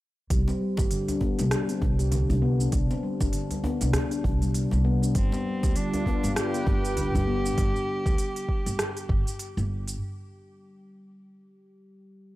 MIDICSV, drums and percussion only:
0, 0, Header, 1, 3, 480
1, 0, Start_track
1, 0, Key_signature, 1, "major"
1, 0, Tempo, 606061
1, 239, Time_signature, 4, 2, 24, 8
1, 9788, End_track
2, 0, Start_track
2, 0, Title_t, "Djembe"
2, 377, Note_on_c, 9, 62, 58
2, 457, Note_off_c, 9, 62, 0
2, 612, Note_on_c, 9, 62, 62
2, 691, Note_off_c, 9, 62, 0
2, 860, Note_on_c, 9, 63, 61
2, 940, Note_off_c, 9, 63, 0
2, 956, Note_on_c, 9, 63, 75
2, 1035, Note_off_c, 9, 63, 0
2, 1103, Note_on_c, 9, 62, 58
2, 1182, Note_off_c, 9, 62, 0
2, 1438, Note_on_c, 9, 63, 63
2, 1517, Note_off_c, 9, 63, 0
2, 1679, Note_on_c, 9, 63, 75
2, 1758, Note_off_c, 9, 63, 0
2, 1820, Note_on_c, 9, 64, 72
2, 1899, Note_off_c, 9, 64, 0
2, 2302, Note_on_c, 9, 62, 54
2, 2381, Note_off_c, 9, 62, 0
2, 2539, Note_on_c, 9, 62, 57
2, 2618, Note_off_c, 9, 62, 0
2, 2778, Note_on_c, 9, 63, 62
2, 2858, Note_off_c, 9, 63, 0
2, 2881, Note_on_c, 9, 63, 82
2, 2960, Note_off_c, 9, 63, 0
2, 3021, Note_on_c, 9, 62, 52
2, 3100, Note_off_c, 9, 62, 0
2, 3116, Note_on_c, 9, 64, 84
2, 3195, Note_off_c, 9, 64, 0
2, 3361, Note_on_c, 9, 64, 77
2, 3441, Note_off_c, 9, 64, 0
2, 3733, Note_on_c, 9, 62, 53
2, 3812, Note_off_c, 9, 62, 0
2, 4216, Note_on_c, 9, 62, 65
2, 4295, Note_off_c, 9, 62, 0
2, 4460, Note_on_c, 9, 62, 61
2, 4540, Note_off_c, 9, 62, 0
2, 4702, Note_on_c, 9, 63, 59
2, 4782, Note_off_c, 9, 63, 0
2, 4807, Note_on_c, 9, 63, 79
2, 4886, Note_off_c, 9, 63, 0
2, 4937, Note_on_c, 9, 62, 44
2, 5016, Note_off_c, 9, 62, 0
2, 5278, Note_on_c, 9, 63, 67
2, 5357, Note_off_c, 9, 63, 0
2, 5518, Note_on_c, 9, 63, 84
2, 5597, Note_off_c, 9, 63, 0
2, 5662, Note_on_c, 9, 64, 81
2, 5741, Note_off_c, 9, 64, 0
2, 9788, End_track
3, 0, Start_track
3, 0, Title_t, "Drums"
3, 240, Note_on_c, 9, 36, 107
3, 241, Note_on_c, 9, 46, 68
3, 246, Note_on_c, 9, 69, 52
3, 320, Note_off_c, 9, 36, 0
3, 320, Note_off_c, 9, 46, 0
3, 325, Note_off_c, 9, 69, 0
3, 387, Note_on_c, 9, 69, 30
3, 466, Note_off_c, 9, 69, 0
3, 620, Note_on_c, 9, 36, 94
3, 625, Note_on_c, 9, 69, 69
3, 700, Note_off_c, 9, 36, 0
3, 704, Note_off_c, 9, 69, 0
3, 718, Note_on_c, 9, 46, 66
3, 724, Note_on_c, 9, 69, 53
3, 797, Note_off_c, 9, 46, 0
3, 803, Note_off_c, 9, 69, 0
3, 859, Note_on_c, 9, 46, 42
3, 864, Note_on_c, 9, 69, 29
3, 938, Note_off_c, 9, 46, 0
3, 944, Note_off_c, 9, 69, 0
3, 960, Note_on_c, 9, 36, 55
3, 1039, Note_off_c, 9, 36, 0
3, 1098, Note_on_c, 9, 46, 45
3, 1103, Note_on_c, 9, 69, 66
3, 1177, Note_off_c, 9, 46, 0
3, 1182, Note_off_c, 9, 69, 0
3, 1197, Note_on_c, 9, 37, 79
3, 1197, Note_on_c, 9, 46, 63
3, 1202, Note_on_c, 9, 69, 52
3, 1276, Note_off_c, 9, 37, 0
3, 1276, Note_off_c, 9, 46, 0
3, 1281, Note_off_c, 9, 69, 0
3, 1338, Note_on_c, 9, 46, 32
3, 1343, Note_on_c, 9, 69, 34
3, 1417, Note_off_c, 9, 46, 0
3, 1422, Note_off_c, 9, 69, 0
3, 1439, Note_on_c, 9, 36, 91
3, 1518, Note_off_c, 9, 36, 0
3, 1577, Note_on_c, 9, 46, 27
3, 1582, Note_on_c, 9, 69, 56
3, 1656, Note_off_c, 9, 46, 0
3, 1662, Note_off_c, 9, 69, 0
3, 1676, Note_on_c, 9, 46, 59
3, 1682, Note_on_c, 9, 69, 49
3, 1755, Note_off_c, 9, 46, 0
3, 1761, Note_off_c, 9, 69, 0
3, 1822, Note_on_c, 9, 69, 32
3, 1902, Note_off_c, 9, 69, 0
3, 2062, Note_on_c, 9, 69, 63
3, 2141, Note_off_c, 9, 69, 0
3, 2156, Note_on_c, 9, 46, 66
3, 2159, Note_on_c, 9, 36, 104
3, 2161, Note_on_c, 9, 69, 56
3, 2235, Note_off_c, 9, 46, 0
3, 2238, Note_off_c, 9, 36, 0
3, 2240, Note_off_c, 9, 69, 0
3, 2303, Note_on_c, 9, 69, 28
3, 2382, Note_off_c, 9, 69, 0
3, 2539, Note_on_c, 9, 36, 95
3, 2542, Note_on_c, 9, 69, 72
3, 2619, Note_off_c, 9, 36, 0
3, 2621, Note_off_c, 9, 69, 0
3, 2636, Note_on_c, 9, 46, 60
3, 2641, Note_on_c, 9, 69, 53
3, 2715, Note_off_c, 9, 46, 0
3, 2720, Note_off_c, 9, 69, 0
3, 2777, Note_on_c, 9, 46, 43
3, 2782, Note_on_c, 9, 69, 33
3, 2856, Note_off_c, 9, 46, 0
3, 2861, Note_off_c, 9, 69, 0
3, 3016, Note_on_c, 9, 46, 43
3, 3022, Note_on_c, 9, 69, 67
3, 3096, Note_off_c, 9, 46, 0
3, 3101, Note_off_c, 9, 69, 0
3, 3116, Note_on_c, 9, 37, 77
3, 3116, Note_on_c, 9, 46, 64
3, 3121, Note_on_c, 9, 69, 55
3, 3195, Note_off_c, 9, 37, 0
3, 3195, Note_off_c, 9, 46, 0
3, 3200, Note_off_c, 9, 69, 0
3, 3257, Note_on_c, 9, 46, 33
3, 3263, Note_on_c, 9, 69, 34
3, 3336, Note_off_c, 9, 46, 0
3, 3342, Note_off_c, 9, 69, 0
3, 3359, Note_on_c, 9, 36, 100
3, 3439, Note_off_c, 9, 36, 0
3, 3499, Note_on_c, 9, 46, 29
3, 3504, Note_on_c, 9, 69, 59
3, 3578, Note_off_c, 9, 46, 0
3, 3583, Note_off_c, 9, 69, 0
3, 3599, Note_on_c, 9, 46, 64
3, 3604, Note_on_c, 9, 69, 54
3, 3678, Note_off_c, 9, 46, 0
3, 3684, Note_off_c, 9, 69, 0
3, 3745, Note_on_c, 9, 69, 35
3, 3824, Note_off_c, 9, 69, 0
3, 3985, Note_on_c, 9, 69, 66
3, 4064, Note_off_c, 9, 69, 0
3, 4079, Note_on_c, 9, 46, 63
3, 4080, Note_on_c, 9, 36, 115
3, 4084, Note_on_c, 9, 69, 55
3, 4158, Note_off_c, 9, 46, 0
3, 4159, Note_off_c, 9, 36, 0
3, 4163, Note_off_c, 9, 69, 0
3, 4226, Note_on_c, 9, 69, 31
3, 4305, Note_off_c, 9, 69, 0
3, 4461, Note_on_c, 9, 36, 108
3, 4464, Note_on_c, 9, 69, 74
3, 4541, Note_off_c, 9, 36, 0
3, 4544, Note_off_c, 9, 69, 0
3, 4559, Note_on_c, 9, 46, 62
3, 4564, Note_on_c, 9, 69, 57
3, 4638, Note_off_c, 9, 46, 0
3, 4643, Note_off_c, 9, 69, 0
3, 4701, Note_on_c, 9, 46, 41
3, 4706, Note_on_c, 9, 69, 33
3, 4780, Note_off_c, 9, 46, 0
3, 4785, Note_off_c, 9, 69, 0
3, 4800, Note_on_c, 9, 36, 63
3, 4880, Note_off_c, 9, 36, 0
3, 4941, Note_on_c, 9, 46, 41
3, 4947, Note_on_c, 9, 69, 63
3, 5020, Note_off_c, 9, 46, 0
3, 5026, Note_off_c, 9, 69, 0
3, 5040, Note_on_c, 9, 37, 75
3, 5040, Note_on_c, 9, 46, 64
3, 5045, Note_on_c, 9, 69, 57
3, 5119, Note_off_c, 9, 37, 0
3, 5119, Note_off_c, 9, 46, 0
3, 5125, Note_off_c, 9, 69, 0
3, 5181, Note_on_c, 9, 46, 30
3, 5187, Note_on_c, 9, 69, 37
3, 5260, Note_off_c, 9, 46, 0
3, 5266, Note_off_c, 9, 69, 0
3, 5281, Note_on_c, 9, 36, 99
3, 5360, Note_off_c, 9, 36, 0
3, 5421, Note_on_c, 9, 46, 28
3, 5427, Note_on_c, 9, 69, 62
3, 5501, Note_off_c, 9, 46, 0
3, 5506, Note_off_c, 9, 69, 0
3, 5519, Note_on_c, 9, 46, 59
3, 5525, Note_on_c, 9, 69, 51
3, 5598, Note_off_c, 9, 46, 0
3, 5604, Note_off_c, 9, 69, 0
3, 5667, Note_on_c, 9, 69, 35
3, 5746, Note_off_c, 9, 69, 0
3, 5906, Note_on_c, 9, 69, 64
3, 5986, Note_off_c, 9, 69, 0
3, 6001, Note_on_c, 9, 36, 113
3, 6001, Note_on_c, 9, 46, 63
3, 6006, Note_on_c, 9, 69, 58
3, 6080, Note_off_c, 9, 36, 0
3, 6080, Note_off_c, 9, 46, 0
3, 6086, Note_off_c, 9, 69, 0
3, 6147, Note_on_c, 9, 69, 31
3, 6226, Note_off_c, 9, 69, 0
3, 6382, Note_on_c, 9, 36, 112
3, 6387, Note_on_c, 9, 69, 73
3, 6461, Note_off_c, 9, 36, 0
3, 6466, Note_off_c, 9, 69, 0
3, 6481, Note_on_c, 9, 46, 63
3, 6487, Note_on_c, 9, 69, 55
3, 6560, Note_off_c, 9, 46, 0
3, 6566, Note_off_c, 9, 69, 0
3, 6623, Note_on_c, 9, 46, 42
3, 6628, Note_on_c, 9, 69, 33
3, 6702, Note_off_c, 9, 46, 0
3, 6708, Note_off_c, 9, 69, 0
3, 6721, Note_on_c, 9, 36, 60
3, 6800, Note_off_c, 9, 36, 0
3, 6862, Note_on_c, 9, 46, 41
3, 6867, Note_on_c, 9, 69, 67
3, 6941, Note_off_c, 9, 46, 0
3, 6946, Note_off_c, 9, 69, 0
3, 6961, Note_on_c, 9, 37, 73
3, 6961, Note_on_c, 9, 46, 65
3, 6967, Note_on_c, 9, 69, 55
3, 7040, Note_off_c, 9, 37, 0
3, 7040, Note_off_c, 9, 46, 0
3, 7046, Note_off_c, 9, 69, 0
3, 7102, Note_on_c, 9, 46, 30
3, 7107, Note_on_c, 9, 69, 36
3, 7181, Note_off_c, 9, 46, 0
3, 7186, Note_off_c, 9, 69, 0
3, 7201, Note_on_c, 9, 36, 104
3, 7280, Note_off_c, 9, 36, 0
3, 7342, Note_on_c, 9, 46, 27
3, 7348, Note_on_c, 9, 69, 60
3, 7421, Note_off_c, 9, 46, 0
3, 7427, Note_off_c, 9, 69, 0
3, 7440, Note_on_c, 9, 46, 58
3, 7446, Note_on_c, 9, 69, 54
3, 7519, Note_off_c, 9, 46, 0
3, 7525, Note_off_c, 9, 69, 0
3, 7586, Note_on_c, 9, 69, 34
3, 7666, Note_off_c, 9, 69, 0
3, 7821, Note_on_c, 9, 46, 29
3, 7827, Note_on_c, 9, 69, 65
3, 7901, Note_off_c, 9, 46, 0
3, 7906, Note_off_c, 9, 69, 0
3, 9788, End_track
0, 0, End_of_file